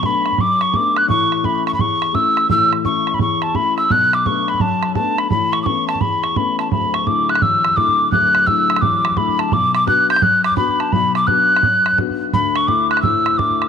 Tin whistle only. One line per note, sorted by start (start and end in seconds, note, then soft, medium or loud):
0.06 0.42 B5 loud
0.41 0.63 D6 loud
0.62 0.77 C#6 loud
0.76 0.99 D6 loud
0.97 1.09 F#6 medium
1.09 1.47 C#6 loud
1.45 1.67 B5 medium
1.67 1.74 C#6 loud
1.74 1.82 B5 medium
1.81 2.16 C#6 loud
2.15 2.50 E6 loud
2.50 2.71 E6 loud
2.85 3.16 C#6 loud
3.14 3.20 B5 medium
3.22 3.44 C#6 medium
3.43 3.57 A5 medium
3.56 3.77 B5 loud
3.78 3.93 E6 loud
3.92 4.16 F#6 loud
4.14 4.28 D6 loud
4.27 4.51 C#6 medium
4.49 4.63 B5 medium
4.61 4.95 A5 medium
4.95 5.20 A5 medium
5.19 5.30 B5 medium
5.31 5.54 B5 loud
5.53 5.62 C#6 medium
5.63 5.88 C#6 loud
5.63 5.67 D6 medium
5.88 6.02 A5 medium
6.01 6.25 B5 medium
6.23 6.39 C#6 medium
6.37 6.59 B5 medium
6.60 6.71 A5 medium
6.72 6.96 B5 loud
6.94 7.08 C#6 medium
7.07 7.31 D6 medium
7.30 7.44 F#6 loud
7.42 7.78 E6 medium
7.76 8.12 D6 loud
8.12 8.48 F#6 loud
8.47 8.83 E6 loud
8.81 9.19 D6 loud
9.17 9.41 B5 loud
9.40 9.55 A5 loud
9.53 9.74 D6 loud
9.75 9.87 D6 loud
9.88 10.09 F#6 loud
10.11 10.24 G6 loud
10.22 10.44 F#6 loud
10.45 10.56 D6 loud
10.57 10.82 B5 loud
10.80 10.94 A5 loud
10.92 11.15 B5 loud
11.16 11.28 D6 medium
11.27 11.98 F#6 loud
12.34 12.58 B5 loud
12.56 12.69 C#6 medium
12.67 12.90 D6 loud
12.91 13.02 F#6 loud
13.02 13.39 E6 loud
13.38 13.68 D6 loud